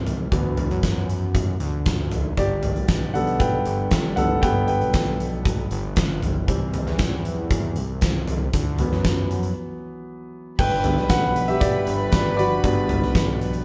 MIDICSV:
0, 0, Header, 1, 5, 480
1, 0, Start_track
1, 0, Key_signature, 1, "major"
1, 0, Tempo, 513259
1, 297, Time_signature, 4, 2, 24, 8
1, 12763, End_track
2, 0, Start_track
2, 0, Title_t, "Violin section"
2, 0, Program_c, 0, 48
2, 9904, Note_on_c, 0, 83, 89
2, 9905, Note_on_c, 0, 71, 75
2, 12763, Note_off_c, 0, 71, 0
2, 12763, Note_off_c, 0, 83, 0
2, 12763, End_track
3, 0, Start_track
3, 0, Title_t, "Grand piano"
3, 0, Program_c, 1, 0
3, 0, Control_c, 1, 64, 127
3, 0, Note_on_c, 1, 52, 46
3, 0, Note_on_c, 1, 55, 43
3, 0, Note_on_c, 1, 60, 54
3, 293, Note_off_c, 1, 52, 0
3, 293, Note_on_c, 1, 52, 52
3, 300, Note_on_c, 1, 54, 46
3, 303, Note_on_c, 1, 59, 55
3, 307, Control_c, 1, 64, 0
3, 312, Note_off_c, 1, 55, 0
3, 316, Note_off_c, 1, 60, 0
3, 498, Control_c, 1, 64, 127
3, 615, Note_off_c, 1, 52, 0
3, 619, Note_off_c, 1, 54, 0
3, 621, Note_off_c, 1, 59, 0
3, 2224, Note_on_c, 1, 74, 84
3, 2232, Note_on_c, 1, 67, 65
3, 2233, Control_c, 1, 64, 0
3, 2408, Control_c, 1, 64, 127
3, 2911, Note_off_c, 1, 67, 0
3, 2935, Note_on_c, 1, 78, 88
3, 2937, Note_on_c, 1, 50, 49
3, 2943, Note_on_c, 1, 55, 47
3, 2948, Note_on_c, 1, 59, 57
3, 2950, Note_on_c, 1, 69, 67
3, 2966, Note_off_c, 1, 74, 0
3, 3163, Note_off_c, 1, 78, 0
3, 3171, Note_off_c, 1, 69, 0
3, 3174, Note_on_c, 1, 79, 85
3, 3188, Note_on_c, 1, 71, 66
3, 3625, Note_off_c, 1, 50, 0
3, 3628, Note_off_c, 1, 55, 0
3, 3631, Note_off_c, 1, 59, 0
3, 3870, Note_off_c, 1, 71, 0
3, 3891, Note_on_c, 1, 78, 88
3, 3897, Note_on_c, 1, 50, 43
3, 3904, Note_on_c, 1, 55, 42
3, 3908, Note_on_c, 1, 59, 55
3, 3911, Note_on_c, 1, 69, 76
3, 3922, Note_off_c, 1, 79, 0
3, 4117, Note_off_c, 1, 50, 0
3, 4121, Note_off_c, 1, 55, 0
3, 4123, Note_off_c, 1, 59, 0
3, 4131, Note_on_c, 1, 79, 94
3, 4132, Note_off_c, 1, 69, 0
3, 4138, Note_on_c, 1, 50, 54
3, 4144, Note_on_c, 1, 55, 48
3, 4146, Note_off_c, 1, 78, 0
3, 4151, Note_on_c, 1, 59, 59
3, 4151, Note_on_c, 1, 71, 70
3, 4355, Note_off_c, 1, 79, 0
3, 4369, Note_on_c, 1, 79, 81
3, 4372, Note_off_c, 1, 71, 0
3, 4389, Note_on_c, 1, 71, 62
3, 5061, Note_off_c, 1, 79, 0
3, 5071, Note_off_c, 1, 71, 0
3, 6026, Note_off_c, 1, 50, 0
3, 6029, Note_off_c, 1, 55, 0
3, 6032, Note_off_c, 1, 59, 0
3, 6054, Note_on_c, 1, 52, 51
3, 6061, Note_on_c, 1, 55, 50
3, 6067, Note_on_c, 1, 60, 62
3, 6079, Control_c, 1, 64, 0
3, 6221, Control_c, 1, 64, 127
3, 7943, Note_off_c, 1, 52, 0
3, 7946, Note_off_c, 1, 55, 0
3, 7949, Note_off_c, 1, 60, 0
3, 7998, Control_c, 1, 64, 0
3, 8160, Control_c, 1, 64, 127
3, 8221, Note_on_c, 1, 52, 47
3, 8226, Note_on_c, 1, 54, 50
3, 8231, Note_on_c, 1, 59, 58
3, 8907, Note_off_c, 1, 52, 0
3, 8910, Note_off_c, 1, 54, 0
3, 8912, Note_off_c, 1, 59, 0
3, 9902, Note_on_c, 1, 79, 109
3, 9914, Note_on_c, 1, 71, 85
3, 9918, Control_c, 1, 64, 0
3, 10065, Control_c, 1, 64, 127
3, 10138, Note_on_c, 1, 50, 57
3, 10146, Note_on_c, 1, 55, 44
3, 10151, Note_on_c, 1, 59, 58
3, 10349, Note_off_c, 1, 79, 0
3, 10356, Note_off_c, 1, 71, 0
3, 10380, Note_on_c, 1, 78, 101
3, 10397, Note_on_c, 1, 71, 68
3, 10725, Note_off_c, 1, 71, 0
3, 10736, Note_on_c, 1, 76, 86
3, 10753, Note_off_c, 1, 78, 0
3, 10753, Note_on_c, 1, 67, 62
3, 10853, Note_on_c, 1, 74, 92
3, 10859, Note_off_c, 1, 67, 0
3, 10863, Note_off_c, 1, 76, 0
3, 10873, Note_on_c, 1, 67, 70
3, 11314, Note_off_c, 1, 67, 0
3, 11331, Note_on_c, 1, 71, 79
3, 11351, Note_on_c, 1, 62, 63
3, 11352, Note_off_c, 1, 74, 0
3, 11559, Note_off_c, 1, 71, 0
3, 11568, Note_on_c, 1, 74, 89
3, 11570, Note_off_c, 1, 62, 0
3, 11586, Note_on_c, 1, 66, 70
3, 11800, Note_off_c, 1, 50, 0
3, 11807, Note_off_c, 1, 55, 0
3, 11812, Note_off_c, 1, 59, 0
3, 11814, Note_on_c, 1, 50, 53
3, 11821, Note_on_c, 1, 55, 55
3, 11826, Note_on_c, 1, 59, 65
3, 12020, Note_off_c, 1, 74, 0
3, 12030, Note_off_c, 1, 66, 0
3, 12500, Note_off_c, 1, 50, 0
3, 12504, Note_off_c, 1, 55, 0
3, 12506, Note_off_c, 1, 59, 0
3, 12763, End_track
4, 0, Start_track
4, 0, Title_t, "Analog synth bass"
4, 0, Program_c, 2, 38
4, 0, Note_on_c, 2, 36, 92
4, 263, Note_off_c, 2, 36, 0
4, 299, Note_on_c, 2, 38, 100
4, 634, Note_off_c, 2, 38, 0
4, 664, Note_on_c, 2, 42, 90
4, 1466, Note_off_c, 2, 42, 0
4, 1500, Note_on_c, 2, 38, 97
4, 2186, Note_off_c, 2, 38, 0
4, 2220, Note_on_c, 2, 31, 101
4, 2584, Note_on_c, 2, 35, 89
4, 2598, Note_off_c, 2, 31, 0
4, 3388, Note_off_c, 2, 35, 0
4, 3422, Note_on_c, 2, 31, 92
4, 4109, Note_off_c, 2, 31, 0
4, 4140, Note_on_c, 2, 31, 94
4, 4503, Note_on_c, 2, 35, 85
4, 4517, Note_off_c, 2, 31, 0
4, 5308, Note_off_c, 2, 35, 0
4, 5343, Note_on_c, 2, 31, 109
4, 6062, Note_on_c, 2, 36, 103
4, 6076, Note_off_c, 2, 31, 0
4, 6399, Note_off_c, 2, 36, 0
4, 6423, Note_on_c, 2, 40, 98
4, 7267, Note_on_c, 2, 36, 110
4, 7281, Note_off_c, 2, 40, 0
4, 7951, Note_off_c, 2, 36, 0
4, 7982, Note_on_c, 2, 38, 109
4, 8319, Note_off_c, 2, 38, 0
4, 8348, Note_on_c, 2, 42, 94
4, 8917, Note_off_c, 2, 42, 0
4, 9903, Note_on_c, 2, 31, 102
4, 10261, Note_on_c, 2, 35, 101
4, 10275, Note_off_c, 2, 31, 0
4, 11064, Note_off_c, 2, 35, 0
4, 11104, Note_on_c, 2, 31, 94
4, 11786, Note_off_c, 2, 31, 0
4, 11818, Note_on_c, 2, 31, 113
4, 12179, Note_on_c, 2, 35, 90
4, 12193, Note_off_c, 2, 31, 0
4, 12763, Note_off_c, 2, 35, 0
4, 12763, End_track
5, 0, Start_track
5, 0, Title_t, "Drums"
5, 61, Note_on_c, 9, 43, 62
5, 68, Note_on_c, 9, 42, 58
5, 155, Note_off_c, 9, 43, 0
5, 161, Note_off_c, 9, 42, 0
5, 299, Note_on_c, 9, 36, 95
5, 300, Note_on_c, 9, 42, 82
5, 392, Note_off_c, 9, 36, 0
5, 394, Note_off_c, 9, 42, 0
5, 536, Note_on_c, 9, 42, 52
5, 538, Note_on_c, 9, 43, 61
5, 629, Note_off_c, 9, 42, 0
5, 631, Note_off_c, 9, 43, 0
5, 663, Note_on_c, 9, 42, 39
5, 756, Note_off_c, 9, 42, 0
5, 777, Note_on_c, 9, 42, 78
5, 778, Note_on_c, 9, 36, 92
5, 780, Note_on_c, 9, 38, 103
5, 871, Note_off_c, 9, 42, 0
5, 872, Note_off_c, 9, 36, 0
5, 873, Note_off_c, 9, 38, 0
5, 1024, Note_on_c, 9, 42, 61
5, 1117, Note_off_c, 9, 42, 0
5, 1259, Note_on_c, 9, 36, 97
5, 1263, Note_on_c, 9, 42, 90
5, 1352, Note_off_c, 9, 36, 0
5, 1356, Note_off_c, 9, 42, 0
5, 1498, Note_on_c, 9, 42, 66
5, 1592, Note_off_c, 9, 42, 0
5, 1737, Note_on_c, 9, 42, 80
5, 1741, Note_on_c, 9, 36, 104
5, 1743, Note_on_c, 9, 38, 99
5, 1830, Note_off_c, 9, 42, 0
5, 1835, Note_off_c, 9, 36, 0
5, 1836, Note_off_c, 9, 38, 0
5, 1978, Note_on_c, 9, 43, 67
5, 1985, Note_on_c, 9, 42, 58
5, 2072, Note_off_c, 9, 43, 0
5, 2078, Note_off_c, 9, 42, 0
5, 2220, Note_on_c, 9, 42, 80
5, 2221, Note_on_c, 9, 36, 95
5, 2314, Note_off_c, 9, 36, 0
5, 2314, Note_off_c, 9, 42, 0
5, 2456, Note_on_c, 9, 42, 56
5, 2458, Note_on_c, 9, 43, 62
5, 2549, Note_off_c, 9, 42, 0
5, 2551, Note_off_c, 9, 43, 0
5, 2581, Note_on_c, 9, 42, 40
5, 2674, Note_off_c, 9, 42, 0
5, 2696, Note_on_c, 9, 42, 85
5, 2699, Note_on_c, 9, 36, 106
5, 2699, Note_on_c, 9, 38, 102
5, 2790, Note_off_c, 9, 42, 0
5, 2792, Note_off_c, 9, 38, 0
5, 2793, Note_off_c, 9, 36, 0
5, 2947, Note_on_c, 9, 42, 54
5, 3040, Note_off_c, 9, 42, 0
5, 3059, Note_on_c, 9, 42, 42
5, 3153, Note_off_c, 9, 42, 0
5, 3179, Note_on_c, 9, 36, 108
5, 3182, Note_on_c, 9, 42, 94
5, 3273, Note_off_c, 9, 36, 0
5, 3275, Note_off_c, 9, 42, 0
5, 3418, Note_on_c, 9, 42, 66
5, 3511, Note_off_c, 9, 42, 0
5, 3654, Note_on_c, 9, 42, 79
5, 3660, Note_on_c, 9, 38, 104
5, 3661, Note_on_c, 9, 36, 94
5, 3748, Note_off_c, 9, 42, 0
5, 3754, Note_off_c, 9, 38, 0
5, 3755, Note_off_c, 9, 36, 0
5, 3900, Note_on_c, 9, 43, 70
5, 3906, Note_on_c, 9, 42, 54
5, 3993, Note_off_c, 9, 43, 0
5, 4000, Note_off_c, 9, 42, 0
5, 4141, Note_on_c, 9, 36, 106
5, 4141, Note_on_c, 9, 42, 76
5, 4234, Note_off_c, 9, 36, 0
5, 4234, Note_off_c, 9, 42, 0
5, 4375, Note_on_c, 9, 42, 51
5, 4468, Note_off_c, 9, 42, 0
5, 4501, Note_on_c, 9, 42, 36
5, 4595, Note_off_c, 9, 42, 0
5, 4615, Note_on_c, 9, 42, 78
5, 4617, Note_on_c, 9, 38, 94
5, 4619, Note_on_c, 9, 36, 109
5, 4708, Note_off_c, 9, 42, 0
5, 4711, Note_off_c, 9, 38, 0
5, 4712, Note_off_c, 9, 36, 0
5, 4865, Note_on_c, 9, 42, 59
5, 4959, Note_off_c, 9, 42, 0
5, 5101, Note_on_c, 9, 36, 111
5, 5105, Note_on_c, 9, 42, 94
5, 5195, Note_off_c, 9, 36, 0
5, 5198, Note_off_c, 9, 42, 0
5, 5339, Note_on_c, 9, 42, 60
5, 5432, Note_off_c, 9, 42, 0
5, 5575, Note_on_c, 9, 42, 74
5, 5581, Note_on_c, 9, 38, 108
5, 5582, Note_on_c, 9, 36, 109
5, 5668, Note_off_c, 9, 42, 0
5, 5674, Note_off_c, 9, 38, 0
5, 5676, Note_off_c, 9, 36, 0
5, 5822, Note_on_c, 9, 43, 69
5, 5828, Note_on_c, 9, 42, 57
5, 5915, Note_off_c, 9, 43, 0
5, 5922, Note_off_c, 9, 42, 0
5, 6062, Note_on_c, 9, 36, 91
5, 6062, Note_on_c, 9, 42, 82
5, 6155, Note_off_c, 9, 42, 0
5, 6156, Note_off_c, 9, 36, 0
5, 6297, Note_on_c, 9, 42, 52
5, 6300, Note_on_c, 9, 43, 62
5, 6391, Note_off_c, 9, 42, 0
5, 6393, Note_off_c, 9, 43, 0
5, 6419, Note_on_c, 9, 38, 35
5, 6512, Note_off_c, 9, 38, 0
5, 6534, Note_on_c, 9, 42, 82
5, 6536, Note_on_c, 9, 38, 112
5, 6540, Note_on_c, 9, 36, 100
5, 6627, Note_off_c, 9, 42, 0
5, 6630, Note_off_c, 9, 38, 0
5, 6633, Note_off_c, 9, 36, 0
5, 6782, Note_on_c, 9, 42, 61
5, 6875, Note_off_c, 9, 42, 0
5, 7019, Note_on_c, 9, 42, 91
5, 7020, Note_on_c, 9, 36, 106
5, 7112, Note_off_c, 9, 42, 0
5, 7114, Note_off_c, 9, 36, 0
5, 7255, Note_on_c, 9, 42, 60
5, 7349, Note_off_c, 9, 42, 0
5, 7494, Note_on_c, 9, 42, 78
5, 7500, Note_on_c, 9, 38, 99
5, 7502, Note_on_c, 9, 36, 103
5, 7588, Note_off_c, 9, 42, 0
5, 7594, Note_off_c, 9, 38, 0
5, 7596, Note_off_c, 9, 36, 0
5, 7739, Note_on_c, 9, 43, 65
5, 7745, Note_on_c, 9, 42, 60
5, 7832, Note_off_c, 9, 43, 0
5, 7839, Note_off_c, 9, 42, 0
5, 7980, Note_on_c, 9, 42, 92
5, 7982, Note_on_c, 9, 36, 90
5, 8074, Note_off_c, 9, 42, 0
5, 8076, Note_off_c, 9, 36, 0
5, 8215, Note_on_c, 9, 42, 57
5, 8217, Note_on_c, 9, 43, 60
5, 8309, Note_off_c, 9, 42, 0
5, 8311, Note_off_c, 9, 43, 0
5, 8341, Note_on_c, 9, 38, 32
5, 8435, Note_off_c, 9, 38, 0
5, 8458, Note_on_c, 9, 42, 84
5, 8461, Note_on_c, 9, 36, 102
5, 8461, Note_on_c, 9, 38, 101
5, 8552, Note_off_c, 9, 42, 0
5, 8554, Note_off_c, 9, 38, 0
5, 8555, Note_off_c, 9, 36, 0
5, 8704, Note_on_c, 9, 42, 57
5, 8798, Note_off_c, 9, 42, 0
5, 8819, Note_on_c, 9, 42, 41
5, 8913, Note_off_c, 9, 42, 0
5, 9901, Note_on_c, 9, 49, 86
5, 9902, Note_on_c, 9, 36, 102
5, 9995, Note_off_c, 9, 49, 0
5, 9996, Note_off_c, 9, 36, 0
5, 10136, Note_on_c, 9, 42, 54
5, 10138, Note_on_c, 9, 43, 64
5, 10229, Note_off_c, 9, 42, 0
5, 10231, Note_off_c, 9, 43, 0
5, 10259, Note_on_c, 9, 38, 35
5, 10352, Note_off_c, 9, 38, 0
5, 10375, Note_on_c, 9, 42, 95
5, 10377, Note_on_c, 9, 38, 106
5, 10379, Note_on_c, 9, 36, 115
5, 10468, Note_off_c, 9, 42, 0
5, 10471, Note_off_c, 9, 38, 0
5, 10472, Note_off_c, 9, 36, 0
5, 10623, Note_on_c, 9, 42, 62
5, 10716, Note_off_c, 9, 42, 0
5, 10738, Note_on_c, 9, 42, 46
5, 10832, Note_off_c, 9, 42, 0
5, 10860, Note_on_c, 9, 36, 115
5, 10862, Note_on_c, 9, 42, 93
5, 10953, Note_off_c, 9, 36, 0
5, 10955, Note_off_c, 9, 42, 0
5, 11099, Note_on_c, 9, 42, 74
5, 11192, Note_off_c, 9, 42, 0
5, 11334, Note_on_c, 9, 42, 88
5, 11339, Note_on_c, 9, 38, 126
5, 11340, Note_on_c, 9, 36, 113
5, 11427, Note_off_c, 9, 42, 0
5, 11433, Note_off_c, 9, 36, 0
5, 11433, Note_off_c, 9, 38, 0
5, 11586, Note_on_c, 9, 42, 54
5, 11679, Note_off_c, 9, 42, 0
5, 11820, Note_on_c, 9, 36, 99
5, 11821, Note_on_c, 9, 42, 81
5, 11913, Note_off_c, 9, 36, 0
5, 11914, Note_off_c, 9, 42, 0
5, 12055, Note_on_c, 9, 42, 52
5, 12057, Note_on_c, 9, 43, 64
5, 12148, Note_off_c, 9, 42, 0
5, 12150, Note_off_c, 9, 43, 0
5, 12181, Note_on_c, 9, 38, 35
5, 12274, Note_off_c, 9, 38, 0
5, 12298, Note_on_c, 9, 36, 112
5, 12300, Note_on_c, 9, 42, 80
5, 12302, Note_on_c, 9, 38, 117
5, 12392, Note_off_c, 9, 36, 0
5, 12393, Note_off_c, 9, 42, 0
5, 12396, Note_off_c, 9, 38, 0
5, 12544, Note_on_c, 9, 42, 54
5, 12638, Note_off_c, 9, 42, 0
5, 12657, Note_on_c, 9, 42, 44
5, 12750, Note_off_c, 9, 42, 0
5, 12763, End_track
0, 0, End_of_file